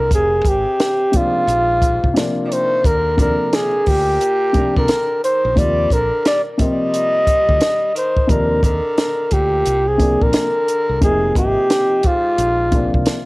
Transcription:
Already playing: tenor saxophone D3, flugelhorn A#4
0.11 fingered electric bass F1, tenor saxophone C3, flugelhorn G#4, kick, closed hi-hat
0.45 fingered electric bass G#1, tenor saxophone C3, flugelhorn G4, kick, closed hi-hat
0.80 snare, closed hi-hat
1.12 tenor saxophone G#2, upright piano C3 F3 A#3 D4, kick, closed hi-hat
1.17 flugelhorn F4
1.47 fingered electric bass A#1, closed hi-hat
1.82 kick, closed hi-hat
2.04 fingered electric bass C2, kick
2.14 upright piano C3 F3 A#3 D4, snare, closed hi-hat
2.45 tenor saxophone F3, flugelhorn D5
2.50 tenor saxophone D#3, flugelhorn C5, closed hi-hat
2.83 fingered electric bass D#2, tenor saxophone D3, flugelhorn A#4, kick, closed hi-hat
3.17 upright piano C3 F3 A#3 D4, tenor saxophone D3, flugelhorn A#4, kick, closed hi-hat
3.52 tenor saxophone D3, flugelhorn G#4, snare, closed hi-hat
3.86 fingered electric bass D2, tenor saxophone A#2, flugelhorn G4, kick, open hi-hat
4.21 closed hi-hat
4.53 upright piano C3 F3 A#3 D4, kick, closed hi-hat
4.76 fingered electric bass C2, tenor saxophone D3, flugelhorn A#4, kick
4.88 snare, closed hi-hat
5.23 tenor saxophone D#3, flugelhorn C5, closed hi-hat
5.45 fingered electric bass A#1
5.55 fingered electric bass D#2, upright piano C3 F3 A#3 F4, tenor saxophone G3, flugelhorn D5, kick, closed hi-hat
5.90 fingered electric bass A#1, tenor saxophone D3, flugelhorn A#4, kick, closed hi-hat
6.25 tenor saxophone G3, flugelhorn D5, snare, closed hi-hat
6.58 upright piano C3 F3 A#3 C4, tenor saxophone G3, kick, closed hi-hat
6.62 flugelhorn D#5
6.94 closed hi-hat
7.27 kick, closed hi-hat
7.49 fingered electric bass D2, kick
7.61 snare, closed hi-hat
7.95 tenor saxophone D#3, flugelhorn C5, closed hi-hat
8.17 kick
8.27 fingered electric bass D#2, upright piano C3 F3 A#3, tenor saxophone D3, flugelhorn A#4, kick, closed hi-hat
8.31 upright piano D4
8.63 tenor saxophone D3, flugelhorn A#4, kick, closed hi-hat
8.98 snare, closed hi-hat
9.31 fingered electric bass D2, tenor saxophone A#2, flugelhorn G4, kick, closed hi-hat
9.66 fingered electric bass C2, closed hi-hat
9.88 tenor saxophone C3, flugelhorn G#4
9.98 upright piano C3 F3 A#3 D4, kick, closed hi-hat
10.22 fingered electric bass A#1, tenor saxophone D3, flugelhorn A#4, kick
10.33 snare, closed hi-hat
10.68 closed hi-hat
10.89 fingered electric bass C2
11.01 fingered electric bass F1, upright piano C3 F3 A#3 D#4, tenor saxophone C3, flugelhorn G#4, kick, closed hi-hat
11.35 fingered electric bass G#1, tenor saxophone C3, flugelhorn G4, kick, closed hi-hat
11.70 snare, closed hi-hat
12.03 tenor saxophone G#2, flugelhorn F4, kick, closed hi-hat
12.38 fingered electric bass A#1, closed hi-hat
12.71 upright piano C3 F3 A#3 D4, kick, closed hi-hat
12.94 fingered electric bass C2, kick
13.06 snare, closed hi-hat

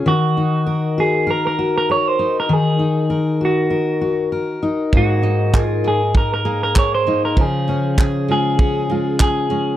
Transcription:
Already playing: steel-string acoustic guitar C#4 F4 G#4
0.06 steel-string acoustic guitar D#3, clean electric guitar F#4
0.37 steel-string acoustic guitar D#4
0.66 steel-string acoustic guitar A#4
0.98 steel-string acoustic guitar F#4, clean electric guitar G#4
1.27 steel-string acoustic guitar A#4, clean electric guitar A#4
1.47 clean electric guitar A#4
1.59 steel-string acoustic guitar F#4
1.78 clean electric guitar A#4
1.90 steel-string acoustic guitar A#4, clean electric guitar C#5
2.08 clean electric guitar C5
2.19 steel-string acoustic guitar D#4
2.40 clean electric guitar A#4
2.49 steel-string acoustic guitar D#3
2.53 clean electric guitar G#4
2.79 steel-string acoustic guitar D#4
3.10 steel-string acoustic guitar A#4
3.41 steel-string acoustic guitar F#4
3.45 clean electric guitar F#4
3.70 steel-string acoustic guitar A#4
4.01 steel-string acoustic guitar F#4
4.32 steel-string acoustic guitar A#4
4.63 steel-string acoustic guitar D#4
4.93 steel-string acoustic guitar G#2, nylon-string guitar A#3, kick
4.97 clean electric guitar F#4
5.22 steel-string acoustic guitar D#4, nylon-string guitar D#4
5.54 nylon-string guitar G#4, steel-string acoustic guitar A#4, kick, clap
5.59 clean electric guitar F4
5.84 nylon-string guitar A#3, steel-string acoustic guitar G#4, clean electric guitar G#4
6.14 nylon-string guitar D#4, steel-string acoustic guitar A#4, clean electric guitar A#4, kick
6.34 clean electric guitar A#4
6.45 nylon-string guitar A#3, steel-string acoustic guitar G#4
6.63 clean electric guitar A#4
6.76 nylon-string guitar G#4, steel-string acoustic guitar A#4, clean electric guitar C#5, kick, clap
6.95 clean electric guitar C5
7.07 nylon-string guitar A#3, steel-string acoustic guitar D#4
7.25 clean electric guitar A#4
7.37 steel-string acoustic guitar C#3, nylon-string guitar F3, kick
7.41 clean electric guitar G#4
7.68 nylon-string guitar C#4, steel-string acoustic guitar C#4
7.98 nylon-string guitar G#4, steel-string acoustic guitar G#4, kick, clap
8.28 nylon-string guitar G#3, steel-string acoustic guitar F4, clean electric guitar G#4
8.59 nylon-string guitar C#4, steel-string acoustic guitar G#4, kick
8.90 nylon-string guitar G#3, steel-string acoustic guitar F4
9.20 nylon-string guitar G#4, steel-string acoustic guitar G#4, clean electric guitar G#4, kick, clap
9.50 nylon-string guitar G#3, steel-string acoustic guitar C#4

